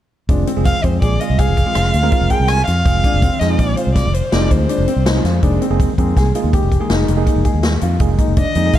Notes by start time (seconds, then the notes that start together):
0.29 F1 G#3 C4 D4 F4 G#4, kick, closed hi-hat
0.47 C4, closed hi-hat
0.56 F1 G#3 C4 F4 G#4
0.65 F5, kick, closed hi-hat
0.84 F2 G#3 C4 F4 G#4 C5, kick, closed hi-hat
1.02 A#1 G#4 D5, kick, closed hi-hat
1.20 G#3 C4 F4 G#4 D#5, closed hi-hat
1.30 C2
1.39 G#4 F5, kick, closed hi-hat
1.48 F1
1.57 kick, closed hi-hat
1.66 G#3 C4 F4 G#4
1.75 F1 F4, cross-stick, closed hi-hat
1.94 D2, closed hi-hat
2.03 G#3 C4 F4 A#4
2.12 F4, kick, closed hi-hat
2.21 F1
2.30 G#4 G5, kick, closed hi-hat
2.40 C2
2.48 G#5, cross-stick, closed hi-hat
2.66 F2 F4 F5, closed hi-hat
2.85 F1 G#3 C4 F4 G#4, kick, closed hi-hat
3.04 D4, kick, closed hi-hat
3.14 F1
3.22 C4, kick, closed hi-hat
3.39 F2 G#3 C4 D#4 F4 G#4 D#5, snare, closed hi-hat
3.50 G#3 C4 F4 G#4
3.59 A#1 D5, kick, closed hi-hat
3.76 F4 C5, closed hi-hat
3.87 C2
3.95 D5, kick, snare, closed hi-hat
4.05 F1
4.14 C5, closed hi-hat
4.32 F1 G#3 C4 D#4 F4 G#4 D5, snare, closed hi-hat
4.51 D2 C5, kick, closed hi-hat
4.69 D4, closed hi-hat
4.78 F1
4.88 C4, closed hi-hat
4.96 C2
5.06 D#4, snare, closed hi-hat
5.15 G#3 C4 F4 G#4
5.24 F2 F4, snare, closed hi-hat
5.43 F1 G#3 A#3 D4 D#4 G#4, kick, closed hi-hat
5.61 C4, closed hi-hat
5.70 F1 G#3 A#3 D#4 G#4
5.80 kick, closed hi-hat
5.98 F2 G#3 A#3 C4 D#4 G#4, kick, closed hi-hat
6.16 C2 G#4, kick, snare, closed hi-hat
6.35 G#3 A#3 D#4 F4 G#4, closed hi-hat
6.44 D#2
6.53 G4, kick, closed hi-hat
6.63 F1
6.72 kick, closed hi-hat
6.80 G#3 A#3 D#4 G#4
6.90 F1 D#4, snare, closed hi-hat
7.08 F1, closed hi-hat
7.17 G#3 A#3 D#4 G#4
7.27 D#4, kick, closed hi-hat
7.36 F1
7.45 G#4, kick, closed hi-hat
7.54 D#2
7.63 snare, closed hi-hat
7.81 F2 F4, closed hi-hat
8.00 F1 G#3 A#3 D#4 G#4, kick, closed hi-hat
8.18 D#4, kick, closed hi-hat
8.28 F1
8.37 D4 D#5, kick, closed hi-hat
8.55 F2 G#3 A#3 D#4 G#4, closed hi-hat
8.65 G#3 A#3 D#4 G#4
8.73 C2 F5, kick, snare, closed hi-hat